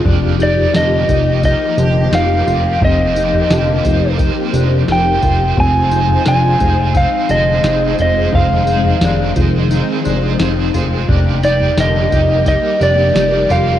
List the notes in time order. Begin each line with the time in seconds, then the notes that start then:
Already playing: F3
0.04 F1 F3 A#3 D4 D#4 G4 D5, kick, floor tom
0.38 G4 D5, tambourine
0.42 D#4 D5
0.58 floor tom
0.73 F1 D3 F3 A#3 G4 D#5, snare, tambourine
1.09 F1 D#4 G4, kick, floor tom, tambourine
1.41 A#3 D#4 G4 D#5, kick, tambourine
1.78 F1 D3 G4, tambourine
2.11 F1 F3 A#3 D#4 G4 D5 F5, snare, tambourine
2.46 F1 F4 G4 D5, floor tom, tambourine
2.50 D#4
2.80 F1 F3 A#3 C4 D#4 G4 C5, kick, floor tom
2.85 D#5
3.14 G4 C5, tambourine
3.19 D#4
3.34 floor tom
3.49 F1 D3 F3 A#3 G4, snare, tambourine
3.84 F1 D#4 G4 C5, kick, floor tom, tambourine
4.18 A#3 D#4 G4, kick, tambourine
4.22 C5
4.53 F1 D4 G4 C5, tambourine
4.58 D#4
4.87 F1 F3 A#3 D#4 G4 C5, snare, tambourine
4.92 G5
5.22 F1 F4 G4 C5, kick, floor tom, tambourine
5.26 D#4
5.56 F1 F3 G#3 C4 D#4 F4 G#4 C5 G#5, kick, floor tom
5.90 G#4 C5, tambourine
5.95 D#4
6.09 floor tom
6.25 F1 F3 C4 D4 D#4 G#4 C5 G#5, snare, tambourine
6.59 F1 G#4 C5, kick, floor tom, tambourine
6.64 D#4
6.94 C4 D#4 G#4 F5, kick, tambourine
6.98 C5
7.28 F1 D3 G#4 C5 D#5, tambourine
7.63 F1 F3 C4 D#4 G#4 C5, snare, tambourine
7.97 F1 F4 G#4 C5, floor tom, tambourine
8.02 D#4 D#5
8.32 F1 D#3 F3 C4 D#4 G#4 C5 F5, kick, floor tom
8.66 G#4 C5, tambourine
8.71 D#4
8.85 floor tom
9.01 F1 F3 C4 D4 D#4 G#4 C5, snare, tambourine
9.36 F1 D#4 G#4, kick, floor tom, tambourine
9.69 C4 D#4 G#4, tambourine
9.74 C5
10.04 F1 D4 G#4 C5, tambourine
10.08 D#4
10.39 F1 F3 C4 D#4 G#4 C5, snare, tambourine
10.73 F1 F4 G#4 C5, floor tom, tambourine
10.77 D#4
11.07 F1 F3 G3 A#3 D4 D#4 G4 D5, kick, floor tom
11.42 G4 D5, tambourine
11.47 D#4
11.61 floor tom
11.77 F1 D3 F3 A#3 G4 D#5, snare, tambourine
12.12 F1 D#4 G4, kick, floor tom, tambourine
12.45 A#3 D#4 G4 D#5, kick, tambourine
12.79 F1 D4 G4 D5, tambourine
12.84 D#4
13.14 F1 F3 A#3 D#4 G4 D5, snare, tambourine
13.49 F1 F4 G4 D5 F5, floor tom, tambourine
13.53 D#4